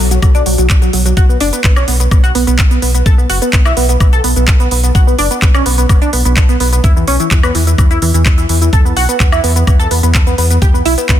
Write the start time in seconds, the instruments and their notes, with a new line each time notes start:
0.00 analog synth bass B1
0.11 synth arpeggio sound F#3, closed hi-hat, shaker
0.22 analog synth bass B1, synth arpeggio sound F#3, kick, closed hi-hat, high woodblock, shaker
0.35 synth arpeggio sound D4, closed hi-hat, shaker
0.46 analog synth bass B1, synth arpeggio sound F#3, open hi-hat
0.58 analog synth bass B1, synth arpeggio sound F#3, closed hi-hat, shaker
0.70 analog synth bass B1, kick, clap, closed hi-hat, shaker
0.82 synth arpeggio sound F#3, closed hi-hat, shaker
0.93 analog synth bass B1, synth arpeggio sound F#3, open hi-hat
1.06 synth arpeggio sound F#3, closed hi-hat, shaker
1.17 analog synth bass B1, synth arpeggio sound F#4, kick, closed hi-hat, shaker
1.29 synth arpeggio sound B3, shaker
1.40 analog synth bass F#1, synth arpeggio sound D4, open hi-hat
1.53 synth arpeggio sound B3, closed hi-hat, shaker
1.64 analog synth bass B1, synth arpeggio sound B3, kick, clap, closed hi-hat, shaker
1.76 synth arpeggio sound C#4, closed hi-hat, high woodblock, shaker
1.88 analog synth bass B1, synth arpeggio sound B3, open hi-hat
2.00 synth arpeggio sound B3, closed hi-hat, shaker
2.11 analog synth bass B1, synth arpeggio sound B3, kick, closed hi-hat, high woodblock, shaker
2.24 synth arpeggio sound F#4, closed hi-hat, shaker
2.35 analog synth bass B1, synth arpeggio sound B3, open hi-hat
2.47 analog synth bass B1, synth arpeggio sound B3, closed hi-hat, shaker
2.59 analog synth bass B1, kick, clap, closed hi-hat, shaker
2.71 synth arpeggio sound B3, closed hi-hat, shaker
2.82 analog synth bass B1, synth arpeggio sound B3, open hi-hat
2.95 synth arpeggio sound B3, closed hi-hat, shaker
3.06 analog synth bass B1, synth arpeggio sound A4, kick, closed hi-hat, shaker
3.18 synth arpeggio sound B3, shaker
3.30 analog synth bass F#1, synth arpeggio sound F#4, open hi-hat
3.42 synth arpeggio sound B3, closed hi-hat, shaker
3.53 analog synth bass B1, synth arpeggio sound B3, kick, clap, closed hi-hat, shaker
3.65 synth arpeggio sound E4, closed hi-hat, high woodblock, shaker
3.77 analog synth bass B1, synth arpeggio sound B3, open hi-hat
3.89 synth arpeggio sound B3, closed hi-hat, shaker
4.00 analog synth bass B1, synth arpeggio sound B3, kick, closed hi-hat, high woodblock, shaker
4.13 synth arpeggio sound A4, closed hi-hat, shaker
4.24 analog synth bass B1, synth arpeggio sound B3, open hi-hat
4.36 analog synth bass B1, synth arpeggio sound B3, closed hi-hat, shaker
4.48 analog synth bass B1, kick, clap, closed hi-hat, shaker
4.60 synth arpeggio sound B3, closed hi-hat, shaker
4.71 analog synth bass B1, synth arpeggio sound B3, open hi-hat
4.83 synth arpeggio sound B3, closed hi-hat, shaker
4.95 analog synth bass B1, synth arpeggio sound F#4, kick, closed hi-hat, shaker
5.07 synth arpeggio sound B3, shaker
5.19 analog synth bass F#1, synth arpeggio sound D4, open hi-hat
5.31 synth arpeggio sound B3, closed hi-hat, shaker
5.42 analog synth bass B1, synth arpeggio sound B3, kick, clap, closed hi-hat, shaker
5.54 synth arpeggio sound C#4, closed hi-hat, high woodblock, shaker
5.66 analog synth bass B1, synth arpeggio sound B3, open hi-hat
5.78 synth arpeggio sound B3, closed hi-hat, shaker
5.89 analog synth bass F#1, synth arpeggio sound B3, kick, closed hi-hat, high woodblock, shaker
6.02 synth arpeggio sound D4, closed hi-hat, shaker
6.13 analog synth bass B1, synth arpeggio sound B3, open hi-hat
6.25 analog synth bass B1, synth arpeggio sound B3, closed hi-hat, shaker
6.37 analog synth bass B1, kick, clap, closed hi-hat, shaker
6.49 synth arpeggio sound B3, closed hi-hat, shaker
6.60 analog synth bass B1, synth arpeggio sound B3, open hi-hat
6.72 synth arpeggio sound B3, closed hi-hat, shaker
6.84 analog synth bass E2, synth arpeggio sound E4, kick, closed hi-hat, shaker
6.96 synth arpeggio sound E3, shaker
7.07 analog synth bass B1, synth arpeggio sound C#4, open hi-hat
7.20 synth arpeggio sound E3, closed hi-hat, shaker
7.31 analog synth bass E2, synth arpeggio sound E3, kick, clap, closed hi-hat, shaker
7.43 synth arpeggio sound B3, closed hi-hat, high woodblock, shaker
7.55 analog synth bass E2, synth arpeggio sound E3, open hi-hat
7.67 synth arpeggio sound E3, closed hi-hat, shaker
7.78 analog synth bass E2, synth arpeggio sound E3, kick, closed hi-hat, high woodblock, shaker
7.91 synth arpeggio sound E4, closed hi-hat, shaker
8.02 analog synth bass E2, synth arpeggio sound E3, open hi-hat
8.14 analog synth bass E2, synth arpeggio sound E3, closed hi-hat, shaker
8.26 analog synth bass E2, kick, clap, closed hi-hat, shaker
8.38 synth arpeggio sound E3, closed hi-hat, shaker
8.49 analog synth bass E2, synth arpeggio sound E3, open hi-hat
8.62 synth arpeggio sound E3, closed hi-hat, shaker
8.73 analog synth bass E2, synth arpeggio sound A4, kick, closed hi-hat, shaker
8.85 synth arpeggio sound B3, shaker
8.96 analog synth bass B1, synth arpeggio sound F#4, open hi-hat
9.09 synth arpeggio sound B3, closed hi-hat, shaker
9.20 analog synth bass E2, synth arpeggio sound B3, kick, clap, closed hi-hat, shaker
9.32 synth arpeggio sound E4, closed hi-hat, high woodblock, shaker
9.44 analog synth bass E2, synth arpeggio sound B3, open hi-hat
9.56 synth arpeggio sound B3, closed hi-hat, shaker
9.67 analog synth bass E2, synth arpeggio sound B3, kick, closed hi-hat, high woodblock, shaker
9.79 synth arpeggio sound A4, closed hi-hat, shaker
9.91 analog synth bass E2, synth arpeggio sound B3, open hi-hat
10.03 analog synth bass E2, synth arpeggio sound B3, closed hi-hat, shaker
10.15 analog synth bass E2, kick, clap, closed hi-hat, shaker
10.27 synth arpeggio sound B3, closed hi-hat, shaker
10.38 analog synth bass E2, synth arpeggio sound B3, open hi-hat
10.50 synth arpeggio sound B3, closed hi-hat, shaker
10.62 analog synth bass E2, synth arpeggio sound G4, kick, closed hi-hat, shaker
10.74 synth arpeggio sound B3, shaker
10.85 analog synth bass B1, synth arpeggio sound E4, open hi-hat
10.98 synth arpeggio sound B3, closed hi-hat, shaker
11.09 analog synth bass E2, synth arpeggio sound B3, kick, clap, closed hi-hat, shaker